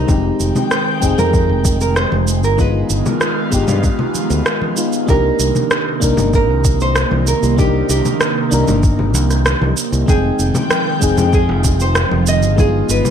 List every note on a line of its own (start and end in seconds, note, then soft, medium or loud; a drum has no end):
0.00 0.10 A#3 medium
0.00 0.10 D4 medium
0.00 0.73 D#4 medium
0.00 0.10 A#4 loud
0.07 0.30 F1 loud
0.07 2.56 D#3 medium
0.07 0.98 G#3 medium
0.07 5.04 G#3 medium
0.07 0.98 C4 medium
0.07 0.99 D#4 medium
0.07 0.99 G4 medium
0.07 2.56 G5 medium
0.07 kick loud
0.07 high conga medium
0.07 shaker soft
0.40 0.50 F1 medium
0.40 shaker medium
0.55 high conga medium
0.55 low conga medium
0.55 shaker soft
0.71 1.18 C5 medium
0.71 cross-stick medium
0.71 shaker soft
1.01 1.13 F1 medium
1.01 2.54 G#3 medium
1.01 2.54 C4 medium
1.01 2.55 D#4 medium
1.01 2.56 G#4 loud
1.01 kick medium
1.01 shaker medium
1.18 1.51 F2 medium
1.18 1.77 A#4 loud
1.18 high conga medium
1.18 low conga medium
1.18 shaker soft
1.34 kick loud
1.34 shaker soft
1.49 2.04 F1 medium
1.65 kick medium
1.65 high conga medium
1.65 shaker medium
1.81 1.96 A#4 medium
1.81 shaker soft
1.96 2.44 C5 medium
1.96 cross-stick medium
1.96 shaker soft
2.12 2.43 F1 medium
2.12 high conga medium
2.28 shaker medium
2.43 2.82 G1 medium
2.43 2.59 A#4 medium
2.43 shaker soft
2.57 5.06 D#3 medium
2.57 3.48 G#3 medium
2.57 3.48 B3 medium
2.57 5.06 B3 medium
2.57 3.49 D#4 medium
2.57 5.06 F4 medium
2.57 3.49 F4 medium
2.57 4.46 B4 medium
2.57 kick loud
2.57 high conga medium
2.57 shaker soft
2.90 3.00 G1 medium
2.90 shaker medium
3.06 high conga medium
3.06 low conga medium
3.06 shaker soft
3.21 cross-stick medium
3.21 shaker soft
3.50 3.63 G1 medium
3.50 4.73 G#3 medium
3.50 4.74 B3 medium
3.50 4.74 D#4 medium
3.50 4.75 G4 loud
3.50 kick medium
3.50 shaker medium
3.68 3.89 G2 medium
3.68 high conga medium
3.68 low conga loud
3.68 shaker soft
3.83 kick loud
3.83 shaker soft
3.99 low conga medium
4.15 high conga medium
4.15 shaker medium
4.30 4.41 D2 medium
4.30 shaker soft
4.46 cross-stick loud
4.46 shaker soft
4.62 high conga medium
4.76 5.04 G#3 medium
4.76 5.05 B3 medium
4.76 5.05 D#4 medium
4.76 5.05 F4 medium
4.76 shaker medium
4.93 shaker soft
5.06 5.30 C2 loud
5.06 10.04 C3 medium
5.06 10.04 D#3 medium
5.06 5.97 A#3 medium
5.06 10.04 A#3 medium
5.06 5.98 D4 medium
5.06 5.99 D#4 medium
5.06 5.99 G4 loud
5.06 5.99 A#4 loud
5.06 kick loud
5.06 high conga medium
5.06 shaker soft
5.39 5.50 C2 medium
5.39 shaker medium
5.55 high conga medium
5.55 low conga medium
5.55 shaker soft
5.71 cross-stick loud
5.71 shaker soft
6.00 6.13 C2 medium
6.00 7.54 A#3 loud
6.00 7.54 D4 medium
6.00 7.55 D#4 medium
6.00 7.56 A#4 loud
6.00 kick medium
6.00 shaker medium
6.17 6.49 G1 medium
6.17 high conga medium
6.17 low conga loud
6.17 shaker soft
6.33 6.81 A#4 loud
6.33 kick loud
6.33 shaker soft
6.49 7.04 C2 medium
6.64 kick loud
6.64 high conga medium
6.64 shaker medium
6.80 7.28 C5 loud
6.80 shaker soft
6.96 cross-stick loud
6.96 shaker soft
7.11 7.33 C2 medium
7.11 high conga loud
7.27 7.59 A#4 loud
7.27 shaker medium
7.43 7.82 C2 medium
7.43 shaker soft
7.56 8.47 A#3 medium
7.56 8.48 D4 medium
7.56 8.49 D#4 medium
7.56 7.89 G4 loud
7.56 8.49 G4 medium
7.56 kick loud
7.56 high conga medium
7.56 shaker soft
7.89 8.00 C2 medium
7.89 9.74 G4 medium
7.89 shaker medium
8.05 high conga medium
8.05 low conga medium
8.05 shaker soft
8.21 cross-stick loud
8.21 shaker soft
8.50 8.63 C2 medium
8.50 10.04 A#3 medium
8.50 10.04 D4 medium
8.50 10.05 D#4 medium
8.50 10.05 A#4 loud
8.50 shaker medium
8.68 9.15 G1 medium
8.68 high conga medium
8.68 low conga loud
8.68 shaker soft
8.83 kick loud
8.83 shaker soft
8.99 low conga medium
9.14 9.54 C2 medium
9.14 high conga medium
9.14 shaker medium
9.30 cross-stick soft
9.30 shaker soft
9.46 cross-stick loud
9.46 shaker soft
9.61 9.72 C2 medium
9.61 high conga loud
9.77 shaker medium
9.92 10.03 C2 medium
9.92 shaker soft
10.06 10.30 F1 loud
10.06 12.56 D#3 medium
10.06 13.10 F3 medium
10.06 10.97 G#3 medium
10.06 10.98 C4 medium
10.06 10.99 D#4 medium
10.06 10.99 G#4 loud
10.06 12.56 G5 medium
10.06 10.99 G5 medium
10.06 kick loud
10.06 high conga medium
10.06 shaker soft
10.39 10.50 F1 medium
10.39 shaker medium
10.55 high conga medium
10.55 low conga loud
10.55 shaker soft
10.71 cross-stick loud
10.71 shaker soft
11.00 11.13 F1 medium
11.00 12.53 G#3 medium
11.00 12.54 C4 medium
11.00 12.55 D#4 medium
11.00 12.55 G#4 loud
11.00 kick medium
11.00 shaker medium
11.17 11.50 F2 medium
11.17 high conga medium
11.17 low conga medium
11.17 shaker soft
11.33 11.81 G#4 medium
11.33 kick loud
11.33 shaker soft
11.49 12.03 F1 loud
11.64 kick loud
11.64 high conga medium
11.64 shaker medium
11.80 12.28 C5 loud
11.80 shaker soft
11.95 cross-stick loud
11.95 shaker soft
12.11 12.42 F1 medium
12.11 high conga loud
12.27 12.60 D#5 loud
12.27 shaker medium
12.42 12.81 G1 medium
12.42 shaker soft
12.56 13.10 D#3 medium
12.56 13.10 G#3 medium
12.56 13.10 B3 medium
12.56 13.10 D#4 medium
12.56 13.10 F4 medium
12.56 12.88 G#4 loud
12.56 kick loud
12.56 high conga medium
12.56 shaker soft
12.89 13.00 G1 medium
12.89 13.10 B4 medium
12.89 shaker medium
13.05 high conga medium
13.05 low conga medium
13.05 shaker soft